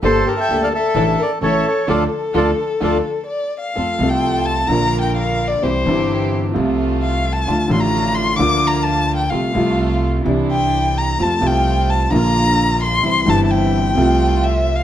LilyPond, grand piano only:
\new Staff \with { instrumentName = "Grand piano" } { \clef bass \time 4/4 \key d \minor \tempo 4 = 129 <g,, g, g bes d' a'>8 r8 <d, d g bes d' a'>8 r8 <a,, a, e a d' a'>8 r8 <a,, a, e a cis' a'>8 r8 | <d f a>8 r8 <d f a>8 r8 <d f a>8 r4. | \key f \major <f, f a c' a'>8 <c, c f a c' a'>4. <bes,, bes, d f bes f'>2 | <c, c e g e'>8 <g,, g, c e g e'>4. <c, c f a f'>2 |
<d, d f a f'>8 <a,, a, d f a f'>4. <d, d f bes f'>2 | <c, c f a f'>8 <c, c f a f'>4. <c, c e g d'>2 | <f, c f a f'>8 <c, c f a f'>4. <bes,, bes, d f bes f'>2 | <c, c e g e'>8 <g,, g, c e g e'>4. <c, c f a f'>2 | }